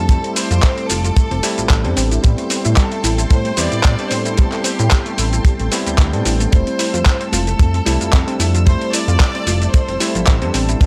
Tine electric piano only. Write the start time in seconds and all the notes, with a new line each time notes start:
0.08 G3 A3 C4 E4
1.43 G3 A3 C4 E4
1.84 G3 B3 C4 D4
2.22 G3 B3 C4 E4
3.57 G3 B3 C4 E4
3.99 G3 B3 C4 D4
4.37 G3 B3 C4 E4
5.71 G3 B3 C4 E4
6.13 G3 B3 C4 D4
6.51 G3 A3 C4 E4
7.86 G3 A3 C4 E4
8.27 G3 A3 C4 D4
8.66 G3 A3 C4 E4
10.00 G3 A3 C4 E4
10.42 G3 B3 C4 D4
10.80 G3 B3 C4 E4